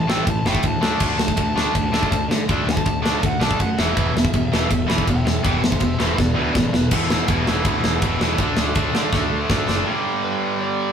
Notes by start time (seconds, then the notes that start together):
0.07 A1 A2 E3 A3 G5, snare
0.26 A1 A2 E3, kick, ride
0.30 A5
0.45 F#1 A2 E3 A3 G5, snare
0.55 kick
0.63 D2 A2 E3 A5, kick, ride
0.81 D2 D3 A3 D4, snare
0.87 A5
0.99 D2 D3 A3 D4, kick, crash
1.06 A5
1.17 D2 D3 A3, snare
1.23 A5
1.28 kick
1.37 D2 D3 A3, kick, ride
1.41 A5
1.55 D2 D3 A3 D4, snare
1.60 A5
1.74 D2 D3 A3, kick, ride
1.92 D2 D3 A3 D4, snare
2.03 kick
2.11 D2 D3 A3, kick, ride
2.29 D3 A3, snare
2.48 D2 D3 A3 D4, kick, ride
2.67 D2 D3 A3, snare
2.71 A5
2.77 kick
2.85 D2 D3 A3, kick, ride
3.02 D2 D3 A3 D4, snare
3.21 D2 D3 A3, kick, ride
3.26 F#5
3.39 B1 D3 A3 D4 A5, snare
3.51 kick
3.59 F#2 D3 A3 F#5, kick, ride
3.78 E1 E2 B2 E3 E5, snare
3.95 E1 E2 B2 E3, kick, ride
4.15 E1 E2 B2, snare
4.25 kick
4.33 E1 E2 B2, kick, ride
4.52 E1 E2 B2 E3, snare
4.70 E1 E2 B2, kick, ride
4.87 E1 E2 B2 E3, snare
4.98 kick
5.06 E1 E2 B2 E5, kick, ride
5.11 G5
5.25 E2 B2 E5 G5, snare
5.43 E1 E2 B2 E3 E5, kick, ride
5.47 G5
5.61 E1 E2 B2 E5, snare
5.66 C5
5.72 kick
5.80 E1 E2 B2 C5, kick, ride
5.84 E5
5.99 E1 E2 B2 E3 C5 E5, snare
6.17 E1 E2 B2 B4 D5, kick, snare
6.34 D2 E2 B2 E3
6.39 B4 D5
6.53 A1 E2 B2, kick, snare
6.58 B4 D5
6.72 E1 E2 B2 B4, snare
6.91 E1 E2 B2 E3, kick, crash
7.10 snare
7.28 E1 E2 B2 E3, kick, ride
7.47 E1 E2 B2 E3, snare
7.64 D2 E2 B2 E3, kick, ride
7.83 E1, snare
8.02 E1 E2 B2 E3, kick, ride
8.20 E1 E2 B2 E3, snare
8.38 D2 D3 A3 D4, kick, ride
8.57 D2, snare
8.75 D2 D3 A3 D4, kick, ride
8.94 D3 A3 D4, snare
9.13 D2 D3 A3 D4, kick, snare
9.30 D2
9.50 D2 D3 A3 D4, kick, snare
9.68 F#1 D3 A3 D4, snare
9.86 G2 D3 G3
10.25 B4
10.60 D5